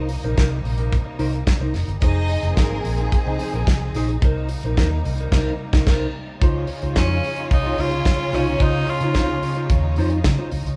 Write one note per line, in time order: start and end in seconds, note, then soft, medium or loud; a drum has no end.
0.00 0.16 C2 loud
0.00 2.00 C3 medium
0.00 2.00 G3 medium
0.00 2.00 A#3 medium
0.00 1.98 D#4 medium
0.09 muted clean electric guitar stroke soft
0.09 open hi-hat medium
0.23 0.35 A#1 medium
0.23 0.37 D#4 medium
0.23 0.38 A#4 medium
0.23 0.38 C5 medium
0.23 closed hi-hat soft
0.37 0.60 C2 medium
0.37 0.57 D#4 medium
0.37 0.51 A#4 medium
0.37 0.50 C5 medium
0.37 kick medium
0.37 snare medium
0.37 closed hi-hat soft
0.52 muted clean electric guitar stroke soft
0.64 0.98 A#1 medium
0.64 muted clean electric guitar stroke soft
0.64 open hi-hat medium
0.78 0.95 D#4 soft
0.78 0.94 A#4 medium
0.78 0.94 C5 medium
0.78 closed hi-hat medium
0.93 kick medium
0.93 closed hi-hat medium
1.06 muted clean electric guitar stroke medium
1.19 1.42 C2 medium
1.19 1.39 D#4 medium
1.19 1.33 A#4 medium
1.19 1.33 C5 loud
1.19 open hi-hat medium
1.33 muted clean electric guitar stroke soft
1.33 closed hi-hat soft
1.47 muted clean electric guitar stroke soft
1.47 kick loud
1.47 snare loud
1.47 closed hi-hat medium
1.60 1.72 C2 medium
1.60 1.75 D#4 medium
1.60 1.75 A#4 medium
1.60 1.75 C5 medium
1.74 1.85 F1 medium
1.74 muted clean electric guitar stroke soft
1.74 snare soft
1.74 open hi-hat medium
1.88 1.99 G1 loud
1.88 muted clean electric guitar stroke soft
1.88 closed hi-hat soft
2.02 2.35 F1 loud
2.02 4.20 F3 medium
2.02 4.20 C4 medium
2.02 2.28 D#4 medium
2.02 2.54 D#4 loud
2.02 6.38 D#4 medium
2.02 2.28 G#4 medium
2.02 4.20 G#4 loud
2.02 2.28 C5 medium
2.02 2.54 D#5 loud
2.02 kick loud
2.02 closed hi-hat medium
2.28 muted clean electric guitar stroke soft
2.28 open hi-hat medium
2.43 2.54 F1 medium
2.43 2.56 D#4 soft
2.43 2.57 G#4 medium
2.43 2.57 C5 medium
2.43 closed hi-hat soft
2.57 2.79 G#1 loud
2.57 3.09 A#3 medium
2.57 2.77 D#4 medium
2.57 2.71 G#4 medium
2.57 3.09 A#4 loud
2.57 2.71 C5 medium
2.57 kick medium
2.57 snare medium
2.57 closed hi-hat soft
2.72 muted clean electric guitar stroke soft
2.84 3.07 A#1 medium
2.84 muted clean electric guitar stroke soft
2.84 open hi-hat medium
2.98 3.13 D#4 soft
2.98 3.14 G#4 medium
2.98 3.15 D#5 medium
2.98 closed hi-hat soft
3.12 muted clean electric guitar stroke soft
3.12 kick loud
3.12 closed hi-hat medium
3.26 3.37 C2 medium
3.26 3.37 C4 medium
3.26 3.39 D#4 medium
3.26 3.40 G#4 medium
3.26 3.37 C5 medium
3.26 3.41 D#5 medium
3.39 3.55 D#4 medium
3.39 3.55 G#4 medium
3.39 3.54 C5 medium
3.39 open hi-hat medium
3.53 3.64 A#1 medium
3.53 3.65 A#3 medium
3.53 3.64 A#4 medium
3.53 muted clean electric guitar stroke soft
3.53 closed hi-hat soft
3.67 3.89 C2 loud
3.67 kick loud
3.67 snare loud
3.67 closed hi-hat medium
3.83 muted clean electric guitar stroke soft
3.94 4.17 A#1 medium
3.94 4.15 D#4 medium
3.94 4.10 G#4 loud
3.94 4.09 C5 loud
3.94 snare soft
3.94 open hi-hat medium
4.09 muted clean electric guitar stroke medium
4.09 closed hi-hat soft
4.21 4.55 C2 loud
4.21 6.39 C3 medium
4.21 6.39 G3 medium
4.21 6.39 A#3 medium
4.21 4.48 D#4 medium
4.21 4.49 A#4 medium
4.21 kick loud
4.21 closed hi-hat medium
4.25 4.49 C5 medium
4.49 muted clean electric guitar stroke soft
4.49 open hi-hat medium
4.63 4.74 A#1 medium
4.63 4.77 D#4 soft
4.63 4.78 A#4 medium
4.63 4.78 C5 medium
4.63 closed hi-hat soft
4.77 4.99 D#2 medium
4.77 4.97 D#4 medium
4.77 4.92 A#4 medium
4.77 4.91 C5 medium
4.77 kick medium
4.77 snare medium
4.77 closed hi-hat soft
5.05 5.27 C2 medium
5.05 muted clean electric guitar stroke soft
5.05 open hi-hat medium
5.18 5.34 D#4 soft
5.18 5.33 A#4 medium
5.18 5.33 C5 medium
5.18 closed hi-hat soft
5.32 5.50 C2 loud
5.32 5.52 D#4 medium
5.32 5.52 A#4 medium
5.32 5.52 C5 medium
5.32 kick loud
5.32 snare loud
5.32 crash medium
5.73 5.85 C2 medium
5.73 5.85 D#4 loud
5.73 5.86 A#4 medium
5.73 5.86 C5 medium
5.73 kick loud
5.73 snare loud
5.87 6.05 C2 medium
5.87 6.06 D#4 medium
5.87 6.06 A#4 loud
5.87 6.06 C5 medium
5.87 kick loud
5.87 snare loud
5.87 crash medium
6.41 6.64 C#2 loud
6.41 10.76 C#3 medium
6.41 10.76 G#3 medium
6.41 10.76 C#4 medium
6.41 10.76 D#4 medium
6.41 6.67 D#4 medium
6.41 10.76 F4 medium
6.41 6.67 F4 medium
6.41 6.68 C5 medium
6.41 10.76 C#5 loud
6.41 kick loud
6.41 closed hi-hat medium
6.67 muted clean electric guitar stroke medium
6.67 open hi-hat medium
6.82 6.94 C#2 medium
6.82 6.95 D#4 medium
6.82 6.96 F4 medium
6.82 6.96 C5 medium
6.82 closed hi-hat soft
6.96 7.19 F2 medium
6.96 7.48 C#4 loud
6.96 7.16 D#4 medium
6.96 7.10 F4 loud
6.96 7.09 C5 medium
6.96 kick medium
6.96 snare loud
6.96 closed hi-hat medium
7.10 muted clean electric guitar stroke soft
7.24 muted clean electric guitar stroke soft
7.24 open hi-hat medium
7.36 7.50 D#4 soft
7.36 7.51 F4 soft
7.36 7.52 C#5 medium
7.36 closed hi-hat soft
7.51 7.73 C2 medium
7.51 7.82 D#4 medium
7.51 muted clean electric guitar stroke soft
7.51 kick loud
7.51 closed hi-hat medium
7.66 7.78 D#4 medium
7.66 7.78 F4 medium
7.66 7.79 C#5 medium
7.78 8.00 C#2 medium
7.78 7.94 D#4 medium
7.78 7.92 F4 medium
7.78 8.37 F4 loud
7.78 7.92 C5 medium
7.78 open hi-hat medium
7.91 muted clean electric guitar stroke soft
7.91 closed hi-hat soft
8.05 kick loud
8.05 snare loud
8.05 closed hi-hat medium
8.20 muted clean electric guitar stroke soft
8.33 8.55 C2 medium
8.33 8.64 C#4 medium
8.33 8.53 D#4 medium
8.33 8.47 F4 medium
8.33 8.47 C5 medium
8.33 snare soft
8.33 open hi-hat medium
8.47 muted clean electric guitar stroke soft
8.47 closed hi-hat soft
8.60 8.83 C#2 loud
8.60 8.86 D#4 medium
8.60 8.92 D#4 loud
8.60 8.86 F4 medium
8.60 8.87 C5 medium
8.60 kick loud
8.60 closed hi-hat medium
8.86 muted clean electric guitar stroke soft
8.86 open hi-hat medium
8.90 9.71 F4 medium
9.01 9.12 C#3 medium
9.01 9.15 D#4 medium
9.01 9.16 F4 medium
9.01 9.16 C5 medium
9.01 closed hi-hat medium
9.14 9.37 C#2 medium
9.14 9.36 D#4 medium
9.14 9.29 F4 medium
9.14 9.28 C5 medium
9.14 kick medium
9.14 snare medium
9.14 closed hi-hat medium
9.29 muted clean electric guitar stroke soft
9.43 muted clean electric guitar stroke soft
9.43 open hi-hat medium
9.55 9.69 D#4 medium
9.55 9.70 F4 medium
9.55 9.70 C5 medium
9.55 closed hi-hat soft
9.70 9.97 D#2 loud
9.70 muted clean electric guitar stroke soft
9.70 kick loud
9.70 closed hi-hat medium
9.85 muted clean electric guitar stroke soft
9.96 10.20 F2 medium
9.96 10.18 D#4 medium
9.96 10.11 F4 loud
9.96 10.10 C5 medium
9.96 open hi-hat medium
10.10 muted clean electric guitar stroke soft
10.10 closed hi-hat medium
10.24 10.36 C#3 loud
10.24 muted clean electric guitar stroke soft
10.24 kick medium
10.24 snare loud
10.24 closed hi-hat medium
10.39 10.51 D#4 medium
10.39 10.51 F4 medium
10.39 10.51 C5 medium
10.51 10.63 C#2 medium
10.51 muted clean electric guitar stroke soft
10.51 open hi-hat medium
10.66 10.76 C#2 loud
10.66 muted clean electric guitar stroke soft
10.66 closed hi-hat soft